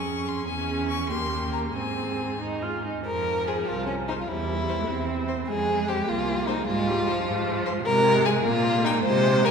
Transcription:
0.00 0.46 F2 medium
0.00 0.46 C#4 soft
0.00 0.46 G#4 medium
0.00 0.29 C#6 medium
0.28 0.46 C6 medium
0.46 1.10 E2 medium
0.46 1.12 C#4 medium
0.46 1.11 G#4 medium
0.46 0.87 G#5 medium
0.88 1.08 C#6 medium
1.08 1.74 D#2 medium
1.08 1.77 A#3 medium
1.08 1.74 G4 medium
1.08 1.51 C6 medium
1.52 1.60 A#5 medium
1.74 2.83 G#2 medium
1.74 2.37 C4 medium
1.74 2.83 G#4 soft
1.74 2.40 G#5 medium
2.40 2.64 D#4 medium
2.63 2.84 F4 medium
2.85 3.06 D#4 soft
3.06 3.58 F2 medium
3.06 4.25 F3 medium
3.06 3.49 A#4 medium
3.47 3.69 G#4 medium
3.47 3.57 C5 medium
3.67 4.19 C2 medium
3.67 3.86 F4 medium
3.86 3.94 C#4 medium
4.08 4.14 D#4 medium
4.08 4.18 C5 soft
4.21 4.29 F4 soft
4.28 4.78 E2 medium
4.28 4.90 G3 medium
4.28 5.28 E4 medium
4.68 4.78 C5 medium
4.88 5.38 E2 medium
4.88 5.50 C4 medium
5.28 5.37 C5 medium
5.48 5.98 F2 medium
5.48 6.09 G#3 medium
5.48 5.90 G#4 medium
5.88 6.10 G4 medium
5.88 5.97 C5 medium
6.07 6.57 C2 medium
6.07 6.67 A#3 medium
6.07 6.49 F4 medium
6.48 6.66 D#4 medium
6.48 6.57 C5 medium
6.67 7.17 G#2 medium
6.67 6.89 G#3 medium
6.67 7.64 F4 medium
6.87 7.08 G3 medium
7.07 7.85 F3 medium
7.07 7.16 C5 medium
7.26 7.75 G#2 medium
7.66 7.75 C5 medium
7.85 8.35 C3 medium
7.85 8.47 G#3 medium
7.85 8.27 A#4 loud
8.25 8.44 G#4 medium
8.25 8.34 G#5 medium
8.45 8.95 A#2 medium
8.45 9.04 A#3 medium
8.45 8.86 F4 loud
8.85 9.03 D#4 medium
8.85 8.94 G5 medium
9.04 9.51 C3 medium
9.04 9.51 G#3 medium
9.04 9.47 C5 loud
9.45 9.51 A#4 loud
9.45 9.51 G#5 medium

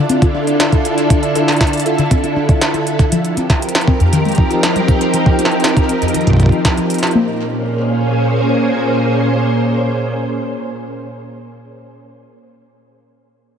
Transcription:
0.00 3.12 D3 medium
0.00 3.12 D4 medium
0.00 3.12 E4 medium
0.00 4.73 F4 medium
0.00 3.12 A4 medium
0.09 0.16 C4 medium
0.09 closed hi-hat medium
0.22 0.28 F4 medium
0.22 kick loud
0.22 closed hi-hat soft
0.35 0.38 D4 medium
0.47 0.51 D5 medium
0.47 closed hi-hat soft
0.60 snare loud
0.60 closed hi-hat medium
0.72 0.76 E4 medium
0.72 kick loud
0.72 closed hi-hat soft
0.85 closed hi-hat medium
0.98 closed hi-hat soft
1.10 1.17 D4 medium
1.10 kick loud
1.10 closed hi-hat medium
1.23 closed hi-hat soft
1.35 1.39 A4 medium
1.35 closed hi-hat medium
1.48 snare medium
1.48 closed hi-hat soft
1.52 closed hi-hat soft
1.56 closed hi-hat soft
1.61 kick medium
1.61 snare loud
1.61 closed hi-hat soft
1.67 closed hi-hat soft
1.73 closed hi-hat medium
1.77 closed hi-hat soft
1.80 closed hi-hat medium
1.82 closed hi-hat soft
1.86 1.90 A4 medium
1.86 closed hi-hat medium
1.98 2.05 D3 medium
1.98 closed hi-hat soft
2.11 2.18 C4 medium
2.11 kick medium
2.11 closed hi-hat medium
2.24 2.30 F4 medium
2.24 closed hi-hat soft
2.36 2.40 D4 medium
2.49 2.53 D5 medium
2.49 kick loud
2.49 closed hi-hat soft
2.61 snare loud
2.61 closed hi-hat medium
2.74 2.78 E4 medium
2.74 closed hi-hat soft
2.87 closed hi-hat medium
2.99 kick loud
2.99 closed hi-hat soft
3.12 7.15 F3 medium
3.12 3.18 F3 medium
3.12 closed hi-hat medium
3.23 7.15 C4 medium
3.23 7.15 G4 medium
3.23 7.15 A#4 medium
3.23 closed hi-hat soft
3.37 3.41 C4 medium
3.37 closed hi-hat medium
3.46 7.15 D#4 medium
3.46 kick medium
3.46 snare soft
3.46 closed hi-hat soft
3.62 closed hi-hat medium
3.69 closed hi-hat medium
3.75 snare loud
3.75 closed hi-hat medium
3.81 closed hi-hat soft
3.88 3.91 C4 medium
3.88 kick loud
4.00 4.07 F2 medium
4.00 closed hi-hat soft
4.13 4.19 D#3 medium
4.13 closed hi-hat medium
4.25 4.32 G#3 medium
4.25 closed hi-hat soft
4.29 closed hi-hat soft
4.32 closed hi-hat soft
4.35 4.42 F3 medium
4.35 kick medium
4.35 closed hi-hat soft
4.51 4.54 F4 medium
4.51 closed hi-hat soft
4.63 snare loud
4.63 closed hi-hat medium
4.76 4.80 G3 medium
4.76 closed hi-hat soft
4.88 kick medium
4.88 closed hi-hat medium
5.01 closed hi-hat soft
5.14 5.20 F3 medium
5.14 closed hi-hat medium
5.26 kick loud
5.39 5.43 C4 medium
5.39 closed hi-hat medium
5.45 snare medium
5.51 closed hi-hat soft
5.60 closed hi-hat soft
5.64 snare loud
5.64 closed hi-hat medium
5.77 kick loud
5.77 closed hi-hat soft
5.89 5.93 C4 medium
5.89 closed hi-hat medium
6.02 6.08 F2 medium
6.02 closed hi-hat soft
6.08 closed hi-hat soft
6.14 6.21 D#3 medium
6.14 closed hi-hat medium
6.21 closed hi-hat soft
6.27 6.33 G#3 medium
6.27 kick soft
6.27 closed hi-hat soft
6.30 kick soft
6.33 kick medium
6.37 6.46 F4 medium
6.37 kick medium
6.37 closed hi-hat soft
6.40 kick medium
6.43 kick medium
6.46 kick medium
6.49 6.59 D#3 medium
6.49 kick medium
6.49 closed hi-hat soft
6.65 kick loud
6.65 snare loud
6.65 closed hi-hat medium
6.77 6.84 F3 medium
6.77 closed hi-hat soft
6.90 closed hi-hat medium
6.94 closed hi-hat soft
6.98 closed hi-hat soft
7.03 snare medium
7.03 closed hi-hat soft
7.07 closed hi-hat soft
7.11 closed hi-hat soft
7.15 11.95 A#2 medium
7.15 7.39 A#3 medium
7.23 11.95 A#3 medium
7.30 11.95 C#4 medium
7.38 11.95 G#4 medium
7.45 11.95 C5 medium

